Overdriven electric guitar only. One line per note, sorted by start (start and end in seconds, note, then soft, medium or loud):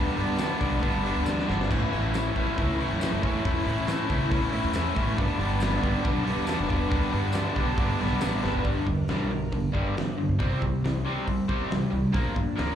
0.00 0.15 G2 loud
0.00 0.16 D3 medium
0.00 0.16 G3 loud
0.00 0.16 B3 loud
0.00 0.16 D4 loud
0.16 0.37 G2 medium
0.16 0.38 D3 medium
0.16 0.38 G3 loud
0.16 0.38 B3 loud
0.16 0.39 D4 loud
0.38 0.58 G2 medium
0.38 0.59 D3 medium
0.38 0.59 G3 loud
0.38 0.60 B3 loud
0.38 0.60 D4 loud
0.59 0.80 G2 medium
0.59 0.81 D3 medium
0.59 0.81 G3 medium
0.59 0.81 B3 medium
0.59 0.82 D4 medium
0.81 1.02 G2 loud
0.81 1.02 D3 loud
0.81 1.03 G3 medium
0.81 1.03 B3 loud
0.81 1.03 D4 loud
1.03 1.23 G2 medium
1.03 1.24 D3 medium
1.03 1.24 G3 loud
1.03 1.24 B3 medium
1.03 1.24 D4 medium
1.24 1.46 G2 loud
1.24 1.47 D3 loud
1.24 1.47 G3 loud
1.24 1.47 B3 medium
1.24 1.47 D4 loud
1.47 1.68 G2 medium
1.47 1.68 D3 medium
1.47 1.68 G3 medium
1.47 1.68 B3 loud
1.47 1.69 D4 medium
1.69 1.89 A2 medium
1.69 1.90 E3 medium
1.69 1.90 A3 medium
1.69 1.91 C#4 loud
1.69 1.91 E4 loud
1.90 2.12 A2 medium
1.90 2.13 E3 medium
1.90 2.13 A3 loud
1.90 2.14 C#4 loud
1.90 2.14 E4 medium
2.12 2.34 A2 medium
2.12 2.35 E3 loud
2.12 2.35 A3 loud
2.12 2.35 C#4 loud
2.12 2.36 E4 loud
2.34 2.56 A2 medium
2.34 2.56 E3 medium
2.34 2.57 A3 medium
2.34 2.57 C#4 medium
2.34 2.58 E4 medium
2.57 2.77 A2 loud
2.57 2.78 E3 medium
2.57 2.79 A3 medium
2.57 2.79 C#4 loud
2.57 2.79 E4 loud
2.79 2.98 A2 medium
2.79 2.99 E3 medium
2.79 2.99 A3 medium
2.79 2.99 C#4 medium
2.79 2.99 E4 medium
2.99 3.20 A2 medium
2.99 3.20 E3 loud
2.99 3.21 A3 loud
2.99 3.21 C#4 loud
2.99 3.22 E4 loud
3.21 3.42 A2 medium
3.21 3.42 E3 medium
3.21 3.43 A3 medium
3.21 3.43 C#4 medium
3.21 3.43 E4 medium
3.43 3.64 A2 medium
3.43 3.64 E3 loud
3.43 3.65 A3 medium
3.43 3.65 C#4 loud
3.43 3.65 E4 loud
3.65 3.85 A2 medium
3.65 3.86 E3 medium
3.65 3.87 A3 loud
3.65 3.87 C#4 loud
3.65 3.88 E4 loud
3.87 4.06 A2 loud
3.87 4.07 E3 loud
3.87 4.08 A3 loud
3.87 4.08 C#4 loud
3.87 4.08 E4 loud
4.08 4.28 A2 medium
4.08 4.29 E3 loud
4.08 4.30 A3 loud
4.08 4.30 C#4 loud
4.08 4.30 E4 loud
4.29 4.50 A2 medium
4.29 4.51 E3 loud
4.29 4.51 A3 medium
4.29 4.51 C#4 loud
4.29 4.52 E4 loud
4.51 4.71 A2 medium
4.51 4.72 E3 medium
4.51 4.72 A3 loud
4.51 4.72 C#4 loud
4.51 4.73 E4 loud
4.72 4.93 A2 loud
4.72 4.94 E3 medium
4.72 4.94 A3 loud
4.72 4.94 C#4 loud
4.72 4.95 E4 loud
4.94 5.16 A2 medium
4.94 5.16 E3 medium
4.94 5.16 A3 medium
4.94 5.16 C#4 loud
4.94 5.17 E4 medium
5.16 5.37 G2 loud
5.16 5.38 D3 loud
5.16 5.38 G3 loud
5.16 5.39 B3 loud
5.16 5.39 D4 loud
5.38 5.59 G2 loud
5.38 5.59 D3 medium
5.38 5.60 G3 medium
5.38 5.61 B3 loud
5.38 5.62 D4 loud
5.60 5.82 G2 medium
5.60 5.81 D3 loud
5.60 5.83 G3 loud
5.60 5.83 B3 loud
5.60 5.83 D4 loud
5.82 6.02 G2 medium
5.82 6.02 D3 loud
5.82 6.03 G3 medium
5.82 6.04 B3 medium
5.82 6.04 D4 loud
6.03 6.23 G2 loud
6.03 6.24 D3 loud
6.03 6.25 G3 loud
6.03 6.25 B3 loud
6.03 6.25 D4 loud
6.24 6.45 G2 medium
6.24 6.44 D3 medium
6.24 6.46 G3 medium
6.24 6.46 B3 medium
6.24 6.47 D4 medium
6.46 6.68 G2 loud
6.46 6.67 D3 loud
6.46 6.69 G3 loud
6.46 6.69 B3 loud
6.46 6.70 D4 loud
6.68 6.88 G2 medium
6.68 6.88 D3 medium
6.68 6.88 G3 medium
6.68 6.89 B3 medium
6.68 6.89 D4 loud
6.89 7.10 G2 medium
6.89 7.10 D3 medium
6.89 7.11 G3 loud
6.89 7.11 B3 loud
6.89 7.11 D4 loud
7.11 7.32 G2 medium
7.11 7.32 D3 medium
7.11 7.33 G3 medium
7.11 7.33 B3 loud
7.11 7.33 D4 loud
7.33 7.54 G2 loud
7.33 7.54 D3 loud
7.33 7.55 G3 loud
7.33 7.55 B3 loud
7.33 7.56 D4 loud
7.55 7.76 G2 medium
7.55 7.76 D3 medium
7.55 7.77 G3 medium
7.55 7.78 B3 medium
7.55 7.78 D4 loud
7.77 7.98 G2 medium
7.77 7.98 D3 loud
7.77 7.98 G3 medium
7.77 7.99 B3 medium
7.77 8.00 D4 medium
7.99 8.19 G2 medium
7.99 8.20 D3 medium
7.99 8.20 G3 medium
7.99 8.20 B3 medium
7.99 8.21 D4 medium
8.20 8.41 G2 loud
8.20 8.42 D3 loud
8.20 8.42 G3 medium
8.20 8.43 B3 loud
8.20 8.43 D4 loud
8.43 8.63 G2 medium
8.43 8.64 D3 medium
8.43 8.64 G3 medium
8.43 8.65 B3 medium
8.43 8.64 D4 medium
8.64 8.85 G2 medium
8.64 8.85 D3 medium
8.64 8.86 G3 medium
8.86 9.06 G2 medium
8.86 9.06 D3 medium
9.09 9.29 G2 medium
9.09 9.29 D3 loud
9.09 9.30 G3 medium
9.31 9.50 G2 medium
9.31 9.51 D3 medium
9.52 9.71 G2 medium
9.52 9.72 D3 medium
9.72 9.94 G2 medium
9.72 9.94 D3 medium
9.72 9.94 G3 loud
9.95 10.15 G2 medium
9.95 10.15 D3 medium
10.18 10.37 G2 medium
10.18 10.38 D3 medium
10.39 10.60 C3 medium
10.39 10.60 G3 medium
10.39 10.60 C4 medium
10.61 10.81 C3 medium
10.61 10.81 G3 medium
10.84 11.03 C3 medium
10.84 11.04 G3 medium
11.05 11.25 C3 medium
11.05 11.25 G3 medium
11.05 11.26 C4 medium
11.26 11.46 C3 medium
11.26 11.46 G3 medium
11.48 11.69 C3 medium
11.48 11.69 G3 loud
11.48 11.69 C4 medium
11.70 11.90 C3 medium
11.70 11.90 G3 medium
11.91 12.11 C3 medium
11.91 12.11 G3 medium
12.13 12.34 A#2 medium
12.13 12.34 F3 medium
12.13 12.34 A#3 loud
12.35 12.55 A#2 medium
12.35 12.55 F3 medium
12.56 12.75 A#2 medium
12.56 12.75 F3 loud
12.56 12.75 A#3 loud